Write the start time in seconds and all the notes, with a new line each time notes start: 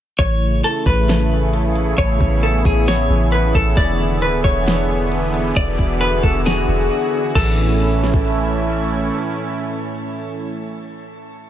0.19 A1 C#3 E3 A3 E4 G#4 C#5, kick, closed hi-hat
0.64 A4, closed hi-hat
0.86 A1 B4, kick, closed hi-hat
1.08 snare, closed hi-hat
1.54 closed hi-hat
1.76 closed hi-hat
1.98 A1 B3 C#5, kick, closed hi-hat
2.21 A1, kick
2.43 A4, closed hi-hat
2.65 A1 G#4, kick, closed hi-hat
2.87 C#5, snare, closed hi-hat
3.10 A1
3.32 B4, closed hi-hat
3.55 A1 A4, kick, closed hi-hat
3.77 E1 D3 B3 D4 G#4 D5 E5, kick, closed hi-hat
4.22 D1 B4, closed hi-hat
4.44 E1 C#5, kick, closed hi-hat
4.67 snare, closed hi-hat
5.12 closed hi-hat
5.34 closed hi-hat
5.56 E1 F#4 D5, kick, closed hi-hat
5.79 E1, kick
6.01 B4, closed hi-hat
6.23 E1 A4, kick, open hi-hat
6.46 G#4, snare, closed hi-hat
6.68 E1
7.35 A1 A2 E3 A3 C#4 E4 A4 G#5, kick, crash
8.04 snare
8.14 kick